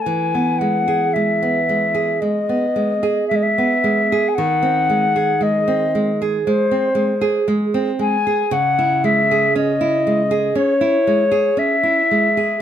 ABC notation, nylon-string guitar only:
X:1
M:4/4
L:1/16
Q:1/4=57
K:E
V:1 name="Nylon-string guitar"
E, B, G, G G, B, G, G G, B, G, G G, B, G, G | D, ^B, G, G G, B, G, G G, B, G, G G, B, G, G | C, E G, G C E G, G C E G, G C E G, G |]